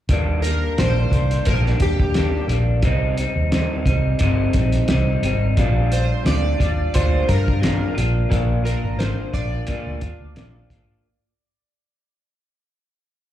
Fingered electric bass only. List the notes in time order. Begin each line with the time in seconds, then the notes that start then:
0.09 D#2
0.78 A#1
1.11 C2
1.47 A#1
1.80 D#2
2.48 A#1
2.83 C2
3.36 D#2
3.86 C2
4.21 G1
4.54 A#1
4.89 C2
5.22 G#1
5.58 A#1
6.25 D2
6.60 D#2
6.96 D2
7.29 G2
7.98 A#1
8.32 A#1
8.84 G#1
9.34 A#1
9.87 D2
10.02 D#2
10.21 D2
10.36 A#1
10.71 G#1